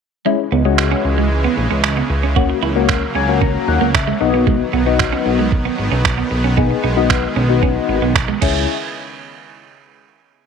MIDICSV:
0, 0, Header, 1, 7, 480
1, 0, Start_track
1, 0, Tempo, 526316
1, 236, Time_signature, 4, 2, 24, 8
1, 9544, End_track
2, 0, Start_track
2, 0, Title_t, "Synth keys"
2, 0, Program_c, 0, 88
2, 232, Note_on_c, 0, 56, 76
2, 233, Note_on_c, 0, 61, 71
2, 235, Note_on_c, 0, 64, 85
2, 357, Note_off_c, 0, 56, 0
2, 357, Note_off_c, 0, 61, 0
2, 358, Note_off_c, 0, 64, 0
2, 473, Note_on_c, 0, 61, 78
2, 478, Note_on_c, 0, 63, 87
2, 536, Note_off_c, 0, 61, 0
2, 538, Note_off_c, 0, 63, 0
2, 593, Note_on_c, 0, 56, 82
2, 594, Note_on_c, 0, 61, 75
2, 597, Note_on_c, 0, 66, 90
2, 1085, Note_off_c, 0, 56, 0
2, 1086, Note_off_c, 0, 61, 0
2, 1087, Note_off_c, 0, 66, 0
2, 2152, Note_on_c, 0, 58, 79
2, 2155, Note_on_c, 0, 61, 71
2, 2157, Note_on_c, 0, 66, 86
2, 2338, Note_off_c, 0, 58, 0
2, 2339, Note_off_c, 0, 61, 0
2, 2341, Note_off_c, 0, 66, 0
2, 2513, Note_on_c, 0, 58, 87
2, 2517, Note_on_c, 0, 61, 75
2, 2520, Note_on_c, 0, 66, 93
2, 2760, Note_off_c, 0, 58, 0
2, 2762, Note_off_c, 0, 61, 0
2, 2763, Note_off_c, 0, 66, 0
2, 2877, Note_on_c, 0, 80, 70
2, 2994, Note_on_c, 0, 58, 78
2, 2996, Note_on_c, 0, 61, 70
2, 2998, Note_on_c, 0, 66, 85
2, 3100, Note_off_c, 0, 80, 0
2, 3118, Note_on_c, 0, 82, 70
2, 3340, Note_off_c, 0, 82, 0
2, 3359, Note_on_c, 0, 78, 71
2, 3486, Note_off_c, 0, 58, 0
2, 3487, Note_off_c, 0, 61, 0
2, 3488, Note_off_c, 0, 66, 0
2, 3581, Note_off_c, 0, 78, 0
2, 3598, Note_on_c, 0, 76, 74
2, 3821, Note_off_c, 0, 76, 0
2, 3835, Note_on_c, 0, 59, 88
2, 3837, Note_on_c, 0, 63, 79
2, 3838, Note_on_c, 0, 75, 70
2, 3840, Note_on_c, 0, 66, 90
2, 4060, Note_off_c, 0, 75, 0
2, 4219, Note_off_c, 0, 59, 0
2, 4221, Note_off_c, 0, 63, 0
2, 4222, Note_off_c, 0, 66, 0
2, 4318, Note_on_c, 0, 63, 78
2, 4323, Note_on_c, 0, 66, 86
2, 4378, Note_off_c, 0, 63, 0
2, 4381, Note_off_c, 0, 66, 0
2, 4436, Note_on_c, 0, 59, 84
2, 4438, Note_on_c, 0, 63, 77
2, 4440, Note_on_c, 0, 66, 92
2, 4927, Note_off_c, 0, 59, 0
2, 4928, Note_off_c, 0, 63, 0
2, 4929, Note_off_c, 0, 66, 0
2, 5994, Note_on_c, 0, 59, 79
2, 5997, Note_on_c, 0, 63, 67
2, 5999, Note_on_c, 0, 68, 89
2, 6179, Note_off_c, 0, 59, 0
2, 6180, Note_off_c, 0, 63, 0
2, 6182, Note_off_c, 0, 68, 0
2, 6354, Note_on_c, 0, 59, 84
2, 6356, Note_on_c, 0, 63, 77
2, 6358, Note_on_c, 0, 66, 94
2, 6600, Note_off_c, 0, 59, 0
2, 6602, Note_off_c, 0, 63, 0
2, 6603, Note_off_c, 0, 66, 0
2, 6833, Note_on_c, 0, 59, 79
2, 6834, Note_on_c, 0, 63, 74
2, 6837, Note_on_c, 0, 66, 89
2, 7325, Note_off_c, 0, 59, 0
2, 7326, Note_off_c, 0, 63, 0
2, 7327, Note_off_c, 0, 66, 0
2, 7680, Note_on_c, 0, 61, 77
2, 7680, Note_on_c, 0, 68, 87
2, 7681, Note_on_c, 0, 64, 74
2, 7901, Note_off_c, 0, 61, 0
2, 7902, Note_off_c, 0, 64, 0
2, 7902, Note_off_c, 0, 68, 0
2, 9544, End_track
3, 0, Start_track
3, 0, Title_t, "Clean electric guitar"
3, 0, Program_c, 1, 27
3, 235, Note_on_c, 1, 56, 90
3, 320, Note_off_c, 1, 56, 0
3, 476, Note_on_c, 1, 59, 72
3, 560, Note_off_c, 1, 59, 0
3, 834, Note_on_c, 1, 61, 80
3, 919, Note_off_c, 1, 61, 0
3, 1076, Note_on_c, 1, 56, 67
3, 1160, Note_off_c, 1, 56, 0
3, 1317, Note_on_c, 1, 59, 69
3, 1401, Note_off_c, 1, 59, 0
3, 1556, Note_on_c, 1, 61, 78
3, 1640, Note_off_c, 1, 61, 0
3, 1797, Note_on_c, 1, 59, 61
3, 1881, Note_off_c, 1, 59, 0
3, 2037, Note_on_c, 1, 61, 67
3, 2121, Note_off_c, 1, 61, 0
3, 2154, Note_on_c, 1, 66, 85
3, 2239, Note_off_c, 1, 66, 0
3, 2395, Note_on_c, 1, 64, 72
3, 2479, Note_off_c, 1, 64, 0
3, 2876, Note_on_c, 1, 61, 77
3, 2960, Note_off_c, 1, 61, 0
3, 3115, Note_on_c, 1, 61, 78
3, 3199, Note_off_c, 1, 61, 0
3, 3475, Note_on_c, 1, 58, 71
3, 3560, Note_off_c, 1, 58, 0
3, 3716, Note_on_c, 1, 56, 82
3, 3800, Note_off_c, 1, 56, 0
3, 3957, Note_on_c, 1, 59, 74
3, 4041, Note_off_c, 1, 59, 0
3, 4076, Note_on_c, 1, 56, 94
3, 4160, Note_off_c, 1, 56, 0
3, 4317, Note_on_c, 1, 59, 76
3, 4400, Note_off_c, 1, 59, 0
3, 4675, Note_on_c, 1, 61, 77
3, 4759, Note_off_c, 1, 61, 0
3, 4916, Note_on_c, 1, 56, 67
3, 5000, Note_off_c, 1, 56, 0
3, 5156, Note_on_c, 1, 59, 67
3, 5240, Note_off_c, 1, 59, 0
3, 5395, Note_on_c, 1, 61, 79
3, 5479, Note_off_c, 1, 61, 0
3, 5635, Note_on_c, 1, 59, 61
3, 5719, Note_off_c, 1, 59, 0
3, 5876, Note_on_c, 1, 61, 69
3, 5960, Note_off_c, 1, 61, 0
3, 5995, Note_on_c, 1, 59, 90
3, 6079, Note_off_c, 1, 59, 0
3, 6235, Note_on_c, 1, 63, 73
3, 6320, Note_off_c, 1, 63, 0
3, 6715, Note_on_c, 1, 61, 81
3, 6800, Note_off_c, 1, 61, 0
3, 6956, Note_on_c, 1, 61, 79
3, 7040, Note_off_c, 1, 61, 0
3, 7316, Note_on_c, 1, 59, 71
3, 7400, Note_off_c, 1, 59, 0
3, 7554, Note_on_c, 1, 56, 80
3, 7639, Note_off_c, 1, 56, 0
3, 7675, Note_on_c, 1, 61, 80
3, 7819, Note_off_c, 1, 61, 0
3, 9544, End_track
4, 0, Start_track
4, 0, Title_t, "Supersaw synth"
4, 0, Program_c, 2, 81
4, 232, Note_on_c, 2, 56, 89
4, 233, Note_on_c, 2, 49, 77
4, 233, Note_on_c, 2, 52, 70
4, 2135, Note_off_c, 2, 52, 0
4, 2135, Note_off_c, 2, 56, 0
4, 2152, Note_on_c, 2, 58, 86
4, 2154, Note_on_c, 2, 54, 70
4, 3798, Note_off_c, 2, 49, 0
4, 3817, Note_off_c, 2, 58, 0
4, 3818, Note_off_c, 2, 54, 0
4, 3834, Note_on_c, 2, 51, 80
4, 3834, Note_on_c, 2, 54, 71
4, 3834, Note_on_c, 2, 59, 83
4, 5736, Note_off_c, 2, 54, 0
4, 5756, Note_on_c, 2, 56, 74
4, 7638, Note_off_c, 2, 59, 0
4, 7639, Note_off_c, 2, 51, 0
4, 7657, Note_off_c, 2, 56, 0
4, 9544, End_track
5, 0, Start_track
5, 0, Title_t, "Analog synth bass"
5, 0, Program_c, 3, 38
5, 477, Note_on_c, 3, 37, 90
5, 862, Note_off_c, 3, 37, 0
5, 956, Note_on_c, 3, 37, 88
5, 1341, Note_off_c, 3, 37, 0
5, 1436, Note_on_c, 3, 34, 87
5, 1532, Note_off_c, 3, 34, 0
5, 1556, Note_on_c, 3, 37, 86
5, 1845, Note_off_c, 3, 37, 0
5, 1915, Note_on_c, 3, 37, 90
5, 2301, Note_off_c, 3, 37, 0
5, 2395, Note_on_c, 3, 37, 90
5, 2781, Note_off_c, 3, 37, 0
5, 2875, Note_on_c, 3, 37, 91
5, 3261, Note_off_c, 3, 37, 0
5, 3355, Note_on_c, 3, 39, 88
5, 3452, Note_off_c, 3, 39, 0
5, 3475, Note_on_c, 3, 37, 87
5, 3764, Note_off_c, 3, 37, 0
5, 3838, Note_on_c, 3, 35, 88
5, 4222, Note_off_c, 3, 35, 0
5, 4319, Note_on_c, 3, 35, 94
5, 4703, Note_off_c, 3, 35, 0
5, 4798, Note_on_c, 3, 35, 88
5, 5182, Note_off_c, 3, 35, 0
5, 5278, Note_on_c, 3, 32, 87
5, 5373, Note_off_c, 3, 32, 0
5, 5398, Note_on_c, 3, 35, 86
5, 5686, Note_off_c, 3, 35, 0
5, 5757, Note_on_c, 3, 35, 88
5, 6141, Note_off_c, 3, 35, 0
5, 6237, Note_on_c, 3, 35, 90
5, 6622, Note_off_c, 3, 35, 0
5, 6717, Note_on_c, 3, 35, 91
5, 7102, Note_off_c, 3, 35, 0
5, 7196, Note_on_c, 3, 32, 91
5, 7292, Note_off_c, 3, 32, 0
5, 7315, Note_on_c, 3, 35, 85
5, 7604, Note_off_c, 3, 35, 0
5, 7677, Note_on_c, 3, 37, 91
5, 7900, Note_off_c, 3, 37, 0
5, 9544, End_track
6, 0, Start_track
6, 0, Title_t, "Muted clean electric guitar strokes"
6, 595, Note_on_c, 9, 29, 43
6, 686, Note_off_c, 9, 29, 0
6, 957, Note_on_c, 9, 29, 42
6, 1048, Note_off_c, 9, 29, 0
6, 1437, Note_on_c, 9, 29, 43
6, 1529, Note_off_c, 9, 29, 0
6, 1918, Note_on_c, 9, 29, 43
6, 2009, Note_off_c, 9, 29, 0
6, 2276, Note_on_c, 9, 29, 44
6, 2367, Note_off_c, 9, 29, 0
6, 3356, Note_on_c, 9, 29, 45
6, 3448, Note_off_c, 9, 29, 0
6, 3836, Note_on_c, 9, 29, 43
6, 3928, Note_off_c, 9, 29, 0
6, 4436, Note_on_c, 9, 29, 43
6, 4527, Note_off_c, 9, 29, 0
6, 4795, Note_on_c, 9, 29, 43
6, 4886, Note_off_c, 9, 29, 0
6, 5275, Note_on_c, 9, 29, 44
6, 5366, Note_off_c, 9, 29, 0
6, 5754, Note_on_c, 9, 29, 45
6, 5845, Note_off_c, 9, 29, 0
6, 6117, Note_on_c, 9, 29, 45
6, 6208, Note_off_c, 9, 29, 0
6, 7197, Note_on_c, 9, 29, 44
6, 7289, Note_off_c, 9, 29, 0
6, 9544, End_track
7, 0, Start_track
7, 0, Title_t, "Drums"
7, 713, Note_on_c, 9, 26, 109
7, 804, Note_off_c, 9, 26, 0
7, 1675, Note_on_c, 9, 26, 106
7, 1766, Note_off_c, 9, 26, 0
7, 2155, Note_on_c, 9, 36, 108
7, 2247, Note_off_c, 9, 36, 0
7, 2633, Note_on_c, 9, 26, 105
7, 2636, Note_on_c, 9, 36, 101
7, 2724, Note_off_c, 9, 26, 0
7, 2727, Note_off_c, 9, 36, 0
7, 3115, Note_on_c, 9, 36, 106
7, 3206, Note_off_c, 9, 36, 0
7, 3598, Note_on_c, 9, 26, 112
7, 3598, Note_on_c, 9, 36, 108
7, 3689, Note_off_c, 9, 26, 0
7, 3689, Note_off_c, 9, 36, 0
7, 4078, Note_on_c, 9, 36, 111
7, 4169, Note_off_c, 9, 36, 0
7, 4555, Note_on_c, 9, 26, 111
7, 4557, Note_on_c, 9, 36, 101
7, 4646, Note_off_c, 9, 26, 0
7, 4649, Note_off_c, 9, 36, 0
7, 5036, Note_on_c, 9, 36, 103
7, 5127, Note_off_c, 9, 36, 0
7, 5517, Note_on_c, 9, 26, 106
7, 5518, Note_on_c, 9, 36, 106
7, 5608, Note_off_c, 9, 26, 0
7, 5609, Note_off_c, 9, 36, 0
7, 5997, Note_on_c, 9, 36, 108
7, 6088, Note_off_c, 9, 36, 0
7, 6475, Note_on_c, 9, 26, 108
7, 6477, Note_on_c, 9, 36, 98
7, 6566, Note_off_c, 9, 26, 0
7, 6568, Note_off_c, 9, 36, 0
7, 6955, Note_on_c, 9, 36, 101
7, 7046, Note_off_c, 9, 36, 0
7, 7437, Note_on_c, 9, 36, 113
7, 7438, Note_on_c, 9, 26, 109
7, 7528, Note_off_c, 9, 36, 0
7, 7529, Note_off_c, 9, 26, 0
7, 7677, Note_on_c, 9, 36, 94
7, 7678, Note_on_c, 9, 49, 85
7, 7769, Note_off_c, 9, 36, 0
7, 7769, Note_off_c, 9, 49, 0
7, 9544, End_track
0, 0, End_of_file